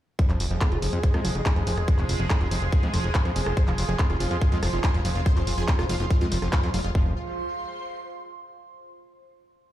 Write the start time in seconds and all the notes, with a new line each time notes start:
0.19 F3 G#3 F4 G#4, kick, closed hi-hat
0.30 F1 F3 C5, clap, closed hi-hat
0.40 F1, open hi-hat
0.51 F1 F3, closed hi-hat
0.61 C4, kick, cross-stick, clap, closed hi-hat
0.72 F1 F4, closed hi-hat
0.82 F1 F3, open hi-hat
0.93 F2, closed hi-hat
1.03 F3, kick, closed hi-hat
1.14 F2 G#3, cross-stick, closed hi-hat
1.25 F1 F3, open hi-hat
1.35 F1 F3, closed hi-hat
1.46 F#3, kick, clap, closed hi-hat
1.56 F1 F3, closed hi-hat
1.67 F1 F3, open hi-hat
1.72 C6
1.77 F1, cross-stick, closed hi-hat
1.88 F3, kick, closed hi-hat
1.99 F1 F3, clap, closed hi-hat
2.09 F1, open hi-hat
2.20 F1 F3
2.30 C4, kick, cross-stick, clap, closed hi-hat
2.41 F1 F4, closed hi-hat
2.51 F1 F3, open hi-hat
2.62 F1, closed hi-hat
2.72 F3, kick, closed hi-hat
2.83 F2 G#3, closed hi-hat
2.94 F1 F3, cross-stick, open hi-hat
3.04 F1 F3, closed hi-hat
3.15 F#3, kick, clap, closed hi-hat
3.25 F2 F3, closed hi-hat
3.36 F1 F3, open hi-hat
3.46 F1, cross-stick, closed hi-hat
3.57 F3 C5, kick, closed hi-hat
3.67 F1 F3 F4, clap, closed hi-hat
3.78 F1 F4, open hi-hat
3.89 F1 F3 G#4, closed hi-hat
3.99 C4 F4, kick, clap, closed hi-hat
4.10 F1 F4, cross-stick, closed hi-hat
4.20 F1 F3 F4, open hi-hat
4.31 F2 F4, closed hi-hat
4.41 F3 F4, kick, closed hi-hat
4.52 F2 G#3 F4, closed hi-hat
4.63 F1 F3 F4, cross-stick, open hi-hat
4.73 F1 F3 F4, closed hi-hat
4.84 F#3 G#4, kick, clap, closed hi-hat
4.94 F1 F3 F4, closed hi-hat
5.05 F1 F3 C4 F4, open hi-hat
5.15 F1 F4, closed hi-hat
5.26 F3 C5, kick, cross-stick, closed hi-hat
5.37 F1 F3 F4, clap, closed hi-hat
5.47 F1 F4, open hi-hat
5.58 F1 F3 G#4, closed hi-hat
5.68 C4 F4, kick, clap, closed hi-hat
5.79 F1 F4, cross-stick, closed hi-hat
5.89 F1 F3 F4, open hi-hat
6.00 F1 F4, closed hi-hat
6.11 F3 F4, kick, closed hi-hat
6.21 F2 G#3 F4, closed hi-hat
6.32 F1 F3 F4, open hi-hat
6.42 F1 F3 F4, cross-stick, closed hi-hat
6.53 F4, kick, clap, closed hi-hat
6.63 F2 F3 F4, closed hi-hat
6.74 F1 F#3 F4, open hi-hat
6.84 F1 F4, closed hi-hat
6.95 F1 F3 F4, kick
7.01 C5
7.08 C6